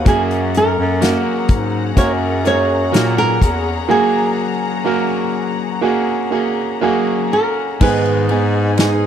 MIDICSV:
0, 0, Header, 1, 7, 480
1, 0, Start_track
1, 0, Tempo, 960000
1, 30, Time_signature, 4, 2, 24, 8
1, 2431, Tempo, 978793
1, 4493, End_track
2, 0, Start_track
2, 0, Title_t, "String section"
2, 0, Program_c, 0, 48
2, 0, Note_on_c, 0, 78, 64
2, 28, Note_on_c, 0, 68, 75
2, 34, Note_on_c, 0, 82, 92
2, 3856, Note_off_c, 0, 68, 0
2, 3860, Note_off_c, 0, 82, 0
2, 3861, Note_off_c, 0, 78, 0
2, 3881, Note_on_c, 0, 68, 73
2, 3884, Note_on_c, 0, 80, 76
2, 3886, Note_on_c, 0, 75, 67
2, 4493, Note_off_c, 0, 68, 0
2, 4493, Note_off_c, 0, 75, 0
2, 4493, Note_off_c, 0, 80, 0
2, 4493, End_track
3, 0, Start_track
3, 0, Title_t, "Nylon-string guitar"
3, 0, Program_c, 1, 24
3, 44, Note_on_c, 1, 68, 92
3, 106, Note_off_c, 1, 68, 0
3, 286, Note_on_c, 1, 70, 103
3, 987, Note_off_c, 1, 70, 0
3, 989, Note_on_c, 1, 73, 100
3, 1054, Note_off_c, 1, 73, 0
3, 1235, Note_on_c, 1, 73, 104
3, 1589, Note_off_c, 1, 73, 0
3, 1591, Note_on_c, 1, 70, 103
3, 1931, Note_off_c, 1, 70, 0
3, 1955, Note_on_c, 1, 68, 83
3, 3376, Note_off_c, 1, 68, 0
3, 3641, Note_on_c, 1, 70, 86
3, 3881, Note_off_c, 1, 70, 0
3, 3883, Note_on_c, 1, 71, 84
3, 4493, Note_off_c, 1, 71, 0
3, 4493, End_track
4, 0, Start_track
4, 0, Title_t, "Grand piano"
4, 0, Program_c, 2, 0
4, 0, Control_c, 2, 64, 127
4, 26, Note_on_c, 2, 58, 89
4, 33, Note_on_c, 2, 66, 74
4, 36, Control_c, 2, 64, 0
4, 36, Note_on_c, 2, 68, 98
4, 134, Control_c, 2, 64, 127
4, 482, Note_off_c, 2, 58, 0
4, 485, Note_off_c, 2, 66, 0
4, 487, Note_off_c, 2, 68, 0
4, 503, Note_on_c, 2, 58, 81
4, 509, Note_on_c, 2, 66, 71
4, 513, Note_on_c, 2, 70, 80
4, 959, Note_off_c, 2, 58, 0
4, 962, Note_off_c, 2, 66, 0
4, 964, Note_off_c, 2, 70, 0
4, 982, Note_on_c, 2, 58, 73
4, 986, Note_on_c, 2, 66, 67
4, 989, Note_on_c, 2, 70, 80
4, 1213, Note_off_c, 2, 58, 0
4, 1214, Note_off_c, 2, 66, 0
4, 1216, Note_off_c, 2, 70, 0
4, 1223, Note_on_c, 2, 58, 55
4, 1225, Note_on_c, 2, 66, 52
4, 1229, Note_on_c, 2, 68, 67
4, 1453, Note_off_c, 2, 58, 0
4, 1454, Note_off_c, 2, 66, 0
4, 1456, Note_off_c, 2, 68, 0
4, 1462, Note_on_c, 2, 58, 73
4, 1465, Note_on_c, 2, 66, 72
4, 1468, Note_on_c, 2, 70, 87
4, 1922, Note_off_c, 2, 58, 0
4, 1924, Note_off_c, 2, 66, 0
4, 1926, Note_off_c, 2, 70, 0
4, 1942, Note_on_c, 2, 66, 76
4, 1943, Note_on_c, 2, 58, 94
4, 1950, Note_on_c, 2, 68, 98
4, 2404, Note_off_c, 2, 66, 0
4, 2405, Note_off_c, 2, 58, 0
4, 2408, Note_off_c, 2, 68, 0
4, 2422, Note_on_c, 2, 58, 80
4, 2427, Note_on_c, 2, 66, 75
4, 2433, Note_on_c, 2, 70, 89
4, 2880, Note_off_c, 2, 58, 0
4, 2882, Note_off_c, 2, 66, 0
4, 2886, Note_off_c, 2, 70, 0
4, 2897, Note_on_c, 2, 58, 86
4, 2901, Note_on_c, 2, 66, 82
4, 2905, Note_on_c, 2, 68, 94
4, 3131, Note_off_c, 2, 58, 0
4, 3134, Note_off_c, 2, 66, 0
4, 3136, Note_off_c, 2, 68, 0
4, 3138, Note_on_c, 2, 58, 73
4, 3144, Note_on_c, 2, 66, 59
4, 3147, Note_on_c, 2, 68, 73
4, 3375, Note_off_c, 2, 58, 0
4, 3378, Note_off_c, 2, 66, 0
4, 3379, Note_off_c, 2, 68, 0
4, 3388, Note_on_c, 2, 58, 94
4, 3393, Note_on_c, 2, 66, 80
4, 3396, Note_on_c, 2, 68, 102
4, 3851, Note_off_c, 2, 58, 0
4, 3853, Note_off_c, 2, 66, 0
4, 3855, Note_off_c, 2, 68, 0
4, 3876, Note_on_c, 2, 56, 86
4, 3880, Note_on_c, 2, 59, 80
4, 3882, Note_on_c, 2, 44, 55
4, 3882, Note_on_c, 2, 63, 67
4, 3884, Control_c, 2, 64, 0
4, 3886, Note_on_c, 2, 68, 100
4, 3963, Control_c, 2, 64, 127
4, 4104, Note_off_c, 2, 56, 0
4, 4106, Note_off_c, 2, 59, 0
4, 4107, Note_off_c, 2, 63, 0
4, 4109, Note_off_c, 2, 68, 0
4, 4114, Note_on_c, 2, 56, 57
4, 4118, Note_on_c, 2, 59, 58
4, 4120, Note_on_c, 2, 63, 57
4, 4124, Note_on_c, 2, 68, 64
4, 4342, Note_off_c, 2, 56, 0
4, 4344, Note_off_c, 2, 59, 0
4, 4345, Note_off_c, 2, 63, 0
4, 4347, Note_off_c, 2, 68, 0
4, 4353, Note_on_c, 2, 56, 69
4, 4359, Note_on_c, 2, 63, 71
4, 4363, Note_on_c, 2, 68, 83
4, 4493, Note_off_c, 2, 44, 0
4, 4493, Note_off_c, 2, 56, 0
4, 4493, Note_off_c, 2, 63, 0
4, 4493, Note_off_c, 2, 68, 0
4, 4493, End_track
5, 0, Start_track
5, 0, Title_t, "Clean electric guitar"
5, 0, Program_c, 3, 27
5, 26, Note_on_c, 3, 54, 76
5, 30, Note_on_c, 3, 58, 78
5, 32, Note_on_c, 3, 61, 85
5, 36, Note_on_c, 3, 66, 88
5, 39, Note_on_c, 3, 68, 87
5, 500, Note_off_c, 3, 54, 0
5, 503, Note_off_c, 3, 58, 0
5, 506, Note_off_c, 3, 61, 0
5, 506, Note_on_c, 3, 54, 70
5, 508, Note_off_c, 3, 66, 0
5, 509, Note_on_c, 3, 58, 73
5, 512, Note_on_c, 3, 61, 80
5, 514, Note_on_c, 3, 66, 74
5, 515, Note_off_c, 3, 68, 0
5, 517, Note_on_c, 3, 68, 80
5, 978, Note_off_c, 3, 58, 0
5, 984, Note_on_c, 3, 58, 57
5, 985, Note_off_c, 3, 54, 0
5, 985, Note_off_c, 3, 61, 0
5, 989, Note_off_c, 3, 66, 0
5, 991, Note_on_c, 3, 61, 57
5, 997, Note_on_c, 3, 66, 54
5, 999, Note_off_c, 3, 68, 0
5, 1001, Note_on_c, 3, 68, 63
5, 1218, Note_off_c, 3, 68, 0
5, 1224, Note_on_c, 3, 68, 55
5, 1225, Note_off_c, 3, 66, 0
5, 1226, Note_off_c, 3, 58, 0
5, 1229, Note_off_c, 3, 61, 0
5, 1231, Note_on_c, 3, 66, 49
5, 1241, Note_on_c, 3, 61, 44
5, 1460, Note_on_c, 3, 54, 72
5, 1461, Note_off_c, 3, 61, 0
5, 1463, Note_off_c, 3, 66, 0
5, 1463, Note_on_c, 3, 58, 81
5, 1466, Note_off_c, 3, 68, 0
5, 1467, Note_on_c, 3, 61, 70
5, 1469, Note_on_c, 3, 66, 79
5, 1473, Note_on_c, 3, 68, 76
5, 1697, Note_off_c, 3, 68, 0
5, 1703, Note_on_c, 3, 68, 51
5, 1704, Note_off_c, 3, 54, 0
5, 1706, Note_off_c, 3, 58, 0
5, 1706, Note_off_c, 3, 66, 0
5, 1708, Note_off_c, 3, 61, 0
5, 1712, Note_on_c, 3, 66, 50
5, 1720, Note_on_c, 3, 61, 38
5, 1946, Note_off_c, 3, 68, 0
5, 1947, Note_on_c, 3, 54, 76
5, 1948, Note_off_c, 3, 61, 0
5, 1949, Note_off_c, 3, 66, 0
5, 1950, Note_on_c, 3, 58, 86
5, 1954, Note_on_c, 3, 61, 82
5, 1955, Note_on_c, 3, 66, 82
5, 1959, Note_on_c, 3, 68, 83
5, 2420, Note_off_c, 3, 54, 0
5, 2424, Note_off_c, 3, 58, 0
5, 2426, Note_off_c, 3, 61, 0
5, 2426, Note_on_c, 3, 54, 67
5, 2430, Note_on_c, 3, 58, 69
5, 2431, Note_off_c, 3, 66, 0
5, 2432, Note_on_c, 3, 61, 76
5, 2434, Note_off_c, 3, 68, 0
5, 2436, Note_on_c, 3, 68, 76
5, 2437, Note_on_c, 3, 66, 72
5, 2895, Note_off_c, 3, 58, 0
5, 2901, Note_off_c, 3, 61, 0
5, 2901, Note_on_c, 3, 58, 68
5, 2906, Note_off_c, 3, 54, 0
5, 2907, Note_off_c, 3, 66, 0
5, 2907, Note_on_c, 3, 61, 60
5, 2913, Note_on_c, 3, 66, 63
5, 2914, Note_off_c, 3, 68, 0
5, 2916, Note_on_c, 3, 68, 72
5, 3140, Note_off_c, 3, 68, 0
5, 3146, Note_off_c, 3, 58, 0
5, 3146, Note_on_c, 3, 68, 59
5, 3148, Note_off_c, 3, 66, 0
5, 3149, Note_off_c, 3, 61, 0
5, 3154, Note_on_c, 3, 66, 57
5, 3162, Note_on_c, 3, 61, 53
5, 3391, Note_off_c, 3, 61, 0
5, 3391, Note_off_c, 3, 68, 0
5, 3391, Note_on_c, 3, 54, 85
5, 3393, Note_on_c, 3, 58, 82
5, 3395, Note_off_c, 3, 66, 0
5, 3397, Note_on_c, 3, 61, 81
5, 3400, Note_on_c, 3, 66, 81
5, 3402, Note_on_c, 3, 68, 89
5, 3629, Note_off_c, 3, 68, 0
5, 3635, Note_on_c, 3, 68, 53
5, 3636, Note_off_c, 3, 54, 0
5, 3636, Note_off_c, 3, 58, 0
5, 3638, Note_off_c, 3, 61, 0
5, 3638, Note_off_c, 3, 66, 0
5, 3644, Note_on_c, 3, 66, 57
5, 3651, Note_on_c, 3, 61, 48
5, 3872, Note_on_c, 3, 44, 77
5, 3875, Note_on_c, 3, 51, 76
5, 3877, Note_off_c, 3, 61, 0
5, 3877, Note_off_c, 3, 68, 0
5, 3878, Note_on_c, 3, 56, 76
5, 3879, Note_on_c, 3, 59, 83
5, 3881, Note_off_c, 3, 66, 0
5, 3883, Note_on_c, 3, 63, 83
5, 3884, Note_on_c, 3, 68, 73
5, 4108, Note_off_c, 3, 68, 0
5, 4114, Note_off_c, 3, 44, 0
5, 4114, Note_on_c, 3, 68, 52
5, 4115, Note_off_c, 3, 63, 0
5, 4116, Note_off_c, 3, 51, 0
5, 4117, Note_off_c, 3, 56, 0
5, 4118, Note_off_c, 3, 59, 0
5, 4121, Note_on_c, 3, 63, 48
5, 4126, Note_on_c, 3, 59, 41
5, 4130, Note_on_c, 3, 56, 42
5, 4347, Note_off_c, 3, 56, 0
5, 4353, Note_off_c, 3, 68, 0
5, 4353, Note_on_c, 3, 56, 50
5, 4357, Note_off_c, 3, 63, 0
5, 4360, Note_off_c, 3, 59, 0
5, 4366, Note_on_c, 3, 63, 54
5, 4370, Note_on_c, 3, 68, 54
5, 4493, Note_off_c, 3, 56, 0
5, 4493, Note_off_c, 3, 63, 0
5, 4493, Note_off_c, 3, 68, 0
5, 4493, End_track
6, 0, Start_track
6, 0, Title_t, "Bass clarinet"
6, 0, Program_c, 4, 71
6, 31, Note_on_c, 4, 42, 90
6, 369, Note_off_c, 4, 42, 0
6, 391, Note_on_c, 4, 42, 101
6, 598, Note_off_c, 4, 42, 0
6, 746, Note_on_c, 4, 44, 83
6, 984, Note_on_c, 4, 42, 98
6, 991, Note_off_c, 4, 44, 0
6, 1446, Note_off_c, 4, 42, 0
6, 1471, Note_on_c, 4, 46, 90
6, 1693, Note_off_c, 4, 46, 0
6, 1706, Note_on_c, 4, 40, 83
6, 1931, Note_off_c, 4, 40, 0
6, 3876, Note_on_c, 4, 44, 107
6, 4493, Note_off_c, 4, 44, 0
6, 4493, End_track
7, 0, Start_track
7, 0, Title_t, "Drums"
7, 30, Note_on_c, 9, 42, 80
7, 31, Note_on_c, 9, 36, 105
7, 80, Note_off_c, 9, 42, 0
7, 81, Note_off_c, 9, 36, 0
7, 154, Note_on_c, 9, 42, 49
7, 204, Note_off_c, 9, 42, 0
7, 272, Note_on_c, 9, 42, 58
7, 322, Note_off_c, 9, 42, 0
7, 509, Note_on_c, 9, 42, 85
7, 516, Note_on_c, 9, 38, 97
7, 559, Note_off_c, 9, 42, 0
7, 566, Note_off_c, 9, 38, 0
7, 743, Note_on_c, 9, 42, 58
7, 745, Note_on_c, 9, 36, 92
7, 793, Note_off_c, 9, 42, 0
7, 795, Note_off_c, 9, 36, 0
7, 984, Note_on_c, 9, 36, 82
7, 985, Note_on_c, 9, 42, 81
7, 1034, Note_off_c, 9, 36, 0
7, 1035, Note_off_c, 9, 42, 0
7, 1226, Note_on_c, 9, 42, 65
7, 1276, Note_off_c, 9, 42, 0
7, 1470, Note_on_c, 9, 42, 80
7, 1476, Note_on_c, 9, 38, 98
7, 1520, Note_off_c, 9, 42, 0
7, 1526, Note_off_c, 9, 38, 0
7, 1708, Note_on_c, 9, 36, 73
7, 1709, Note_on_c, 9, 42, 73
7, 1758, Note_off_c, 9, 36, 0
7, 1759, Note_off_c, 9, 42, 0
7, 3875, Note_on_c, 9, 49, 95
7, 3877, Note_on_c, 9, 36, 101
7, 3924, Note_off_c, 9, 49, 0
7, 3926, Note_off_c, 9, 36, 0
7, 3997, Note_on_c, 9, 51, 43
7, 4046, Note_off_c, 9, 51, 0
7, 4112, Note_on_c, 9, 51, 51
7, 4161, Note_off_c, 9, 51, 0
7, 4350, Note_on_c, 9, 51, 72
7, 4357, Note_on_c, 9, 38, 98
7, 4359, Note_on_c, 9, 54, 69
7, 4399, Note_off_c, 9, 51, 0
7, 4406, Note_off_c, 9, 38, 0
7, 4408, Note_off_c, 9, 54, 0
7, 4493, End_track
0, 0, End_of_file